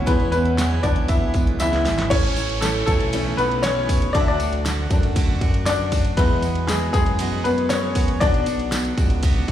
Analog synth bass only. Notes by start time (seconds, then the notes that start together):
0.07 E2
0.84 B1
1.35 B1
1.61 C#2
1.86 G#1
2.11 A1
2.87 B1
3.38 B1
4.15 D2
4.90 F#2
5.41 F#2
6.18 E2
6.94 F#2
7.44 F#2
8.21 B1
8.98 C#2
9.49 C#2